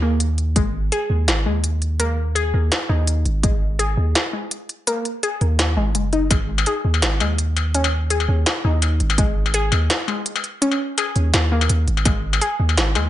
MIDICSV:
0, 0, Header, 1, 5, 480
1, 0, Start_track
1, 0, Tempo, 359281
1, 748, Time_signature, 4, 2, 24, 8
1, 17495, End_track
2, 0, Start_track
2, 0, Title_t, "Synth pluck"
2, 0, Program_c, 0, 84
2, 28, Note_on_c, 0, 58, 73
2, 246, Note_off_c, 0, 58, 0
2, 750, Note_on_c, 0, 56, 83
2, 1207, Note_off_c, 0, 56, 0
2, 1229, Note_on_c, 0, 68, 101
2, 1927, Note_off_c, 0, 68, 0
2, 1949, Note_on_c, 0, 56, 74
2, 2177, Note_off_c, 0, 56, 0
2, 2666, Note_on_c, 0, 58, 99
2, 2896, Note_off_c, 0, 58, 0
2, 3143, Note_on_c, 0, 68, 105
2, 3843, Note_off_c, 0, 68, 0
2, 3864, Note_on_c, 0, 63, 74
2, 4564, Note_off_c, 0, 63, 0
2, 4588, Note_on_c, 0, 56, 80
2, 5046, Note_off_c, 0, 56, 0
2, 5066, Note_on_c, 0, 68, 108
2, 5765, Note_off_c, 0, 68, 0
2, 5786, Note_on_c, 0, 56, 73
2, 6016, Note_off_c, 0, 56, 0
2, 6510, Note_on_c, 0, 58, 102
2, 6738, Note_off_c, 0, 58, 0
2, 6989, Note_on_c, 0, 68, 104
2, 7686, Note_off_c, 0, 68, 0
2, 7706, Note_on_c, 0, 56, 100
2, 7925, Note_off_c, 0, 56, 0
2, 7947, Note_on_c, 0, 56, 81
2, 8092, Note_off_c, 0, 56, 0
2, 8186, Note_on_c, 0, 63, 102
2, 8331, Note_off_c, 0, 63, 0
2, 8424, Note_on_c, 0, 56, 82
2, 8884, Note_off_c, 0, 56, 0
2, 8907, Note_on_c, 0, 68, 100
2, 9605, Note_off_c, 0, 68, 0
2, 9629, Note_on_c, 0, 56, 72
2, 9857, Note_off_c, 0, 56, 0
2, 10348, Note_on_c, 0, 61, 104
2, 10577, Note_off_c, 0, 61, 0
2, 10827, Note_on_c, 0, 68, 108
2, 11525, Note_off_c, 0, 68, 0
2, 11551, Note_on_c, 0, 63, 71
2, 12247, Note_off_c, 0, 63, 0
2, 12271, Note_on_c, 0, 56, 86
2, 12727, Note_off_c, 0, 56, 0
2, 12747, Note_on_c, 0, 68, 105
2, 13446, Note_off_c, 0, 68, 0
2, 13464, Note_on_c, 0, 56, 75
2, 13695, Note_off_c, 0, 56, 0
2, 14183, Note_on_c, 0, 61, 105
2, 14414, Note_off_c, 0, 61, 0
2, 14666, Note_on_c, 0, 68, 104
2, 15365, Note_off_c, 0, 68, 0
2, 15387, Note_on_c, 0, 58, 73
2, 15605, Note_off_c, 0, 58, 0
2, 16106, Note_on_c, 0, 56, 87
2, 16565, Note_off_c, 0, 56, 0
2, 16586, Note_on_c, 0, 68, 102
2, 17285, Note_off_c, 0, 68, 0
2, 17306, Note_on_c, 0, 56, 75
2, 17495, Note_off_c, 0, 56, 0
2, 17495, End_track
3, 0, Start_track
3, 0, Title_t, "808-style bass"
3, 0, Program_c, 1, 38
3, 0, Note_on_c, 1, 39, 91
3, 734, Note_off_c, 1, 39, 0
3, 747, Note_on_c, 1, 32, 102
3, 1213, Note_off_c, 1, 32, 0
3, 1465, Note_on_c, 1, 39, 76
3, 1708, Note_on_c, 1, 32, 99
3, 1728, Note_off_c, 1, 39, 0
3, 1949, Note_on_c, 1, 39, 75
3, 1969, Note_off_c, 1, 32, 0
3, 3374, Note_off_c, 1, 39, 0
3, 3390, Note_on_c, 1, 39, 77
3, 3611, Note_off_c, 1, 39, 0
3, 3864, Note_on_c, 1, 39, 95
3, 4332, Note_off_c, 1, 39, 0
3, 4347, Note_on_c, 1, 32, 93
3, 5293, Note_off_c, 1, 32, 0
3, 5307, Note_on_c, 1, 39, 78
3, 5530, Note_off_c, 1, 39, 0
3, 7229, Note_on_c, 1, 39, 79
3, 7705, Note_on_c, 1, 32, 96
3, 7725, Note_off_c, 1, 39, 0
3, 7941, Note_on_c, 1, 30, 90
3, 7962, Note_off_c, 1, 32, 0
3, 8411, Note_off_c, 1, 30, 0
3, 8424, Note_on_c, 1, 32, 98
3, 8892, Note_off_c, 1, 32, 0
3, 9144, Note_on_c, 1, 39, 75
3, 9385, Note_on_c, 1, 32, 102
3, 9405, Note_off_c, 1, 39, 0
3, 9626, Note_on_c, 1, 39, 78
3, 9646, Note_off_c, 1, 32, 0
3, 11053, Note_off_c, 1, 39, 0
3, 11067, Note_on_c, 1, 39, 77
3, 11289, Note_off_c, 1, 39, 0
3, 11549, Note_on_c, 1, 39, 99
3, 12014, Note_off_c, 1, 39, 0
3, 12027, Note_on_c, 1, 32, 97
3, 12973, Note_off_c, 1, 32, 0
3, 12987, Note_on_c, 1, 39, 81
3, 13210, Note_off_c, 1, 39, 0
3, 14905, Note_on_c, 1, 39, 77
3, 15129, Note_off_c, 1, 39, 0
3, 15147, Note_on_c, 1, 39, 90
3, 15617, Note_off_c, 1, 39, 0
3, 15625, Note_on_c, 1, 39, 97
3, 15849, Note_off_c, 1, 39, 0
3, 15867, Note_on_c, 1, 32, 93
3, 16090, Note_off_c, 1, 32, 0
3, 16105, Note_on_c, 1, 32, 100
3, 16572, Note_off_c, 1, 32, 0
3, 16826, Note_on_c, 1, 39, 80
3, 17067, Note_on_c, 1, 32, 104
3, 17087, Note_off_c, 1, 39, 0
3, 17306, Note_on_c, 1, 39, 79
3, 17326, Note_off_c, 1, 32, 0
3, 17495, Note_off_c, 1, 39, 0
3, 17495, End_track
4, 0, Start_track
4, 0, Title_t, "Struck metal"
4, 8425, Note_on_c, 9, 77, 57
4, 8559, Note_off_c, 9, 77, 0
4, 8792, Note_on_c, 9, 77, 80
4, 8926, Note_off_c, 9, 77, 0
4, 9271, Note_on_c, 9, 77, 53
4, 9405, Note_off_c, 9, 77, 0
4, 9624, Note_on_c, 9, 77, 82
4, 9758, Note_off_c, 9, 77, 0
4, 10108, Note_on_c, 9, 77, 53
4, 10241, Note_off_c, 9, 77, 0
4, 10477, Note_on_c, 9, 77, 79
4, 10610, Note_off_c, 9, 77, 0
4, 10957, Note_on_c, 9, 77, 46
4, 11090, Note_off_c, 9, 77, 0
4, 11307, Note_on_c, 9, 77, 79
4, 11440, Note_off_c, 9, 77, 0
4, 11786, Note_on_c, 9, 77, 50
4, 11919, Note_off_c, 9, 77, 0
4, 12155, Note_on_c, 9, 77, 77
4, 12288, Note_off_c, 9, 77, 0
4, 12636, Note_on_c, 9, 77, 48
4, 12770, Note_off_c, 9, 77, 0
4, 12984, Note_on_c, 9, 77, 77
4, 13117, Note_off_c, 9, 77, 0
4, 13467, Note_on_c, 9, 77, 51
4, 13601, Note_off_c, 9, 77, 0
4, 13835, Note_on_c, 9, 77, 72
4, 13969, Note_off_c, 9, 77, 0
4, 14316, Note_on_c, 9, 77, 50
4, 14449, Note_off_c, 9, 77, 0
4, 14666, Note_on_c, 9, 77, 74
4, 14799, Note_off_c, 9, 77, 0
4, 15145, Note_on_c, 9, 77, 52
4, 15278, Note_off_c, 9, 77, 0
4, 15514, Note_on_c, 9, 77, 75
4, 15648, Note_off_c, 9, 77, 0
4, 15995, Note_on_c, 9, 77, 47
4, 16105, Note_off_c, 9, 77, 0
4, 16105, Note_on_c, 9, 77, 51
4, 16239, Note_off_c, 9, 77, 0
4, 16475, Note_on_c, 9, 77, 77
4, 16608, Note_off_c, 9, 77, 0
4, 16955, Note_on_c, 9, 77, 50
4, 17088, Note_off_c, 9, 77, 0
4, 17305, Note_on_c, 9, 77, 76
4, 17439, Note_off_c, 9, 77, 0
4, 17495, End_track
5, 0, Start_track
5, 0, Title_t, "Drums"
5, 270, Note_on_c, 9, 42, 62
5, 403, Note_off_c, 9, 42, 0
5, 508, Note_on_c, 9, 42, 35
5, 642, Note_off_c, 9, 42, 0
5, 747, Note_on_c, 9, 36, 110
5, 748, Note_on_c, 9, 42, 76
5, 880, Note_off_c, 9, 36, 0
5, 881, Note_off_c, 9, 42, 0
5, 1231, Note_on_c, 9, 42, 62
5, 1364, Note_off_c, 9, 42, 0
5, 1710, Note_on_c, 9, 38, 116
5, 1710, Note_on_c, 9, 42, 77
5, 1844, Note_off_c, 9, 38, 0
5, 1844, Note_off_c, 9, 42, 0
5, 2187, Note_on_c, 9, 42, 59
5, 2321, Note_off_c, 9, 42, 0
5, 2429, Note_on_c, 9, 42, 33
5, 2562, Note_off_c, 9, 42, 0
5, 2667, Note_on_c, 9, 42, 76
5, 2801, Note_off_c, 9, 42, 0
5, 3150, Note_on_c, 9, 42, 62
5, 3284, Note_off_c, 9, 42, 0
5, 3630, Note_on_c, 9, 38, 111
5, 3630, Note_on_c, 9, 42, 76
5, 3764, Note_off_c, 9, 38, 0
5, 3764, Note_off_c, 9, 42, 0
5, 4108, Note_on_c, 9, 42, 63
5, 4241, Note_off_c, 9, 42, 0
5, 4349, Note_on_c, 9, 42, 33
5, 4483, Note_off_c, 9, 42, 0
5, 4588, Note_on_c, 9, 36, 107
5, 4590, Note_on_c, 9, 42, 81
5, 4722, Note_off_c, 9, 36, 0
5, 4723, Note_off_c, 9, 42, 0
5, 5069, Note_on_c, 9, 42, 63
5, 5203, Note_off_c, 9, 42, 0
5, 5549, Note_on_c, 9, 38, 111
5, 5549, Note_on_c, 9, 42, 76
5, 5683, Note_off_c, 9, 38, 0
5, 5683, Note_off_c, 9, 42, 0
5, 6029, Note_on_c, 9, 42, 60
5, 6163, Note_off_c, 9, 42, 0
5, 6270, Note_on_c, 9, 42, 36
5, 6404, Note_off_c, 9, 42, 0
5, 6510, Note_on_c, 9, 42, 84
5, 6644, Note_off_c, 9, 42, 0
5, 6750, Note_on_c, 9, 42, 37
5, 6884, Note_off_c, 9, 42, 0
5, 6990, Note_on_c, 9, 42, 69
5, 7123, Note_off_c, 9, 42, 0
5, 7230, Note_on_c, 9, 42, 36
5, 7363, Note_off_c, 9, 42, 0
5, 7468, Note_on_c, 9, 38, 114
5, 7468, Note_on_c, 9, 42, 79
5, 7602, Note_off_c, 9, 38, 0
5, 7602, Note_off_c, 9, 42, 0
5, 7947, Note_on_c, 9, 42, 64
5, 8081, Note_off_c, 9, 42, 0
5, 8185, Note_on_c, 9, 42, 35
5, 8319, Note_off_c, 9, 42, 0
5, 8425, Note_on_c, 9, 36, 112
5, 8425, Note_on_c, 9, 42, 82
5, 8558, Note_off_c, 9, 36, 0
5, 8559, Note_off_c, 9, 42, 0
5, 8902, Note_on_c, 9, 42, 68
5, 9035, Note_off_c, 9, 42, 0
5, 9383, Note_on_c, 9, 38, 120
5, 9383, Note_on_c, 9, 42, 82
5, 9517, Note_off_c, 9, 38, 0
5, 9517, Note_off_c, 9, 42, 0
5, 9867, Note_on_c, 9, 42, 70
5, 10000, Note_off_c, 9, 42, 0
5, 10108, Note_on_c, 9, 42, 39
5, 10241, Note_off_c, 9, 42, 0
5, 10348, Note_on_c, 9, 42, 82
5, 10481, Note_off_c, 9, 42, 0
5, 10827, Note_on_c, 9, 42, 67
5, 10961, Note_off_c, 9, 42, 0
5, 11307, Note_on_c, 9, 38, 126
5, 11307, Note_on_c, 9, 42, 84
5, 11440, Note_off_c, 9, 38, 0
5, 11440, Note_off_c, 9, 42, 0
5, 11786, Note_on_c, 9, 42, 67
5, 11919, Note_off_c, 9, 42, 0
5, 12026, Note_on_c, 9, 42, 37
5, 12160, Note_off_c, 9, 42, 0
5, 12265, Note_on_c, 9, 36, 121
5, 12266, Note_on_c, 9, 42, 82
5, 12398, Note_off_c, 9, 36, 0
5, 12400, Note_off_c, 9, 42, 0
5, 12743, Note_on_c, 9, 42, 67
5, 12877, Note_off_c, 9, 42, 0
5, 13226, Note_on_c, 9, 38, 125
5, 13226, Note_on_c, 9, 42, 81
5, 13360, Note_off_c, 9, 38, 0
5, 13360, Note_off_c, 9, 42, 0
5, 13706, Note_on_c, 9, 42, 65
5, 13839, Note_off_c, 9, 42, 0
5, 13946, Note_on_c, 9, 42, 37
5, 14079, Note_off_c, 9, 42, 0
5, 14187, Note_on_c, 9, 42, 78
5, 14321, Note_off_c, 9, 42, 0
5, 14666, Note_on_c, 9, 42, 66
5, 14799, Note_off_c, 9, 42, 0
5, 14905, Note_on_c, 9, 42, 34
5, 15038, Note_off_c, 9, 42, 0
5, 15145, Note_on_c, 9, 38, 123
5, 15145, Note_on_c, 9, 42, 78
5, 15278, Note_off_c, 9, 38, 0
5, 15278, Note_off_c, 9, 42, 0
5, 15624, Note_on_c, 9, 42, 65
5, 15758, Note_off_c, 9, 42, 0
5, 15866, Note_on_c, 9, 42, 34
5, 16000, Note_off_c, 9, 42, 0
5, 16105, Note_on_c, 9, 36, 118
5, 16105, Note_on_c, 9, 42, 76
5, 16238, Note_off_c, 9, 36, 0
5, 16239, Note_off_c, 9, 42, 0
5, 16587, Note_on_c, 9, 42, 62
5, 16720, Note_off_c, 9, 42, 0
5, 17068, Note_on_c, 9, 38, 117
5, 17068, Note_on_c, 9, 42, 77
5, 17201, Note_off_c, 9, 38, 0
5, 17201, Note_off_c, 9, 42, 0
5, 17495, End_track
0, 0, End_of_file